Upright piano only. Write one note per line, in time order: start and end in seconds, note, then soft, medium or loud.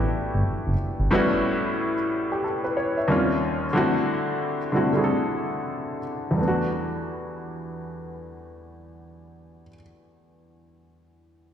0.00 1.13 A3 medium
0.00 1.12 B3 medium
0.00 1.13 D4 medium
0.00 1.13 E4 medium
0.00 1.12 F#4 medium
0.00 1.12 G4 medium
1.11 1.94 A2 loud
1.11 1.94 G3 loud
1.11 1.94 B3 medium
1.11 1.95 C#4 medium
1.11 1.95 E4 medium
1.11 1.96 F#4 loud
2.32 2.43 G4 medium
2.44 2.63 A4 soft
2.64 2.76 B4 medium
2.77 2.96 C#5 medium
2.97 3.28 E5 medium
3.08 3.64 D#2 medium
3.08 3.65 G3 medium
3.08 3.65 A#3 medium
3.08 3.66 C4 medium
3.08 3.66 C#4 medium
3.08 3.66 F4 medium
3.73 4.57 D3 medium
3.73 4.57 G3 medium
3.73 4.58 A3 medium
3.73 4.58 C4 medium
3.73 4.58 E4 medium
3.77 4.59 F#4 loud
4.72 4.89 D3 medium
4.72 4.90 G3 medium
4.72 4.90 A3 medium
4.72 4.90 C4 medium
4.72 4.91 E4 medium
4.76 4.91 F#4 medium
4.93 5.98 D3 medium
4.93 5.98 G3 medium
4.93 5.99 A3 medium
4.93 5.99 C4 medium
4.93 6.00 E4 medium
4.97 5.00 G#4 medium
5.04 6.03 A4 medium
6.31 9.63 E2 medium
6.31 9.66 G3 medium
6.38 9.69 A3 medium
6.38 9.73 B3 medium
6.44 9.76 D4 medium
6.44 9.80 F#4 medium